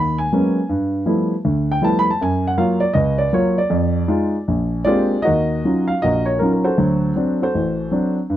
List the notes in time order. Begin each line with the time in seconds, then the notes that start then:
Already playing: D#2 B5
0.18 G#5
0.32 F#3 G#3 A#3 B3 C#4
0.69 G2
1.06 F3 G3 A3 B3 E4
1.45 D2
1.72 G5
1.82 F3 G3 A3 B3 E4 A5
1.99 B5
2.10 A5
2.21 F#2 G#5
2.47 F#5
2.57 F#3 A#3 F4 F5
2.80 D5
2.94 C#2 D#5
3.18 D5
3.33 F#3 A#3 F4 C#5
3.58 D5
3.70 F2
4.08 G#3 D#4 F4
4.48 A#1
4.85 G#3 A#3 C4 D4 F4 G4 G#4 D5
5.22 F#4 A#4 D#5
5.27 D#2
5.65 F#3 C#4 D#4 F4
5.88 F5
6.02 A#1 A#2 F#4 A#4 D#5
6.25 C#5
6.39 F#3 C#4 D#4 F4 A#4
6.53 A#4
6.64 F#4 A4 C5
6.78 D2 F#3
7.16 F#3 C4 D4
7.42 F#4 A4 C5
7.54 A1
7.91 F#3 C4 D4
8.30 G2